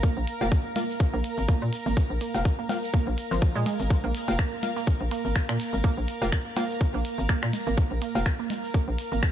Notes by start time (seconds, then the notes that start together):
Already playing: A#4 F5 A#5
0.03 A#3, kick, shaker
0.17 A#1
0.27 closed hi-hat, shaker
0.41 F1 A#3 F4 F5, cowbell, shaker
0.52 kick, shaker
0.76 A#3 F4 F5, closed hi-hat, high conga, shaker
0.90 shaker
1.00 kick, shaker
1.14 A#1 A#3
1.24 closed hi-hat, shaker
1.37 G#1, shaker
1.48 A#3, kick, shaker
1.62 A#2
1.73 closed hi-hat, shaker
1.86 G#1 A#3, high conga, shaker
1.97 kick, shaker
2.10 A#1
2.21 A#3, closed hi-hat, shaker
2.34 F1 A#3 F4 F5, cowbell, shaker
2.45 kick, shaker
2.59 A#3
2.69 A#3 F4 F5, closed hi-hat, cowbell, high conga, shaker
2.83 shaker
2.94 A#3, kick, shaker
3.07 A#1
3.17 closed hi-hat, shaker
3.31 G#1 F3, shaker
3.42 kick, shaker
3.55 A#2 G#3
3.66 G#3, closed hi-hat, high conga, shaker
3.79 G#1, shaker
3.90 kick, shaker
4.04 A#1 A#3
4.15 closed hi-hat, shaker
4.28 F1 A#3 F4 F5, cowbell, shaker
4.39 A#3, finger snap, kick, shaker
4.62 A#3 F4 F5, closed hi-hat, high conga, shaker
4.76 A#3, shaker
4.87 kick, shaker
5.01 A#1
5.11 A#3, closed hi-hat, shaker
5.25 G#1, shaker
5.35 finger snap, kick, shaker
5.49 A#2 A#3, finger snap
5.59 closed hi-hat, shaker
5.73 G#1, high conga, shaker
5.84 A#3, kick, shaker
5.97 A#1
6.08 closed hi-hat, shaker
6.22 F1 A#3 F4 F5, cowbell, shaker
6.32 finger snap, kick, shaker
6.57 A#3 F4 F5, closed hi-hat, cowbell, high conga, shaker
6.70 shaker
6.81 kick, shaker
6.94 A#1 A#3
7.05 closed hi-hat, shaker
7.18 G#1, shaker
7.29 A#3, finger snap, kick, shaker
7.43 A#2, finger snap
7.53 closed hi-hat, high conga, shaker
7.66 G#1 A#3, shaker
7.78 kick, shaker
7.91 A#1
8.01 A#3, closed hi-hat, shaker
8.15 F1 A#3 F4 F5, cowbell, shaker
8.26 finger snap, kick, shaker
8.39 A#3
8.50 closed hi-hat, high conga, shaker
8.64 shaker
8.74 A#3, kick, shaker
8.88 A#1
8.99 closed hi-hat, shaker
9.11 G#1 A#3, shaker
9.23 finger snap, kick, shaker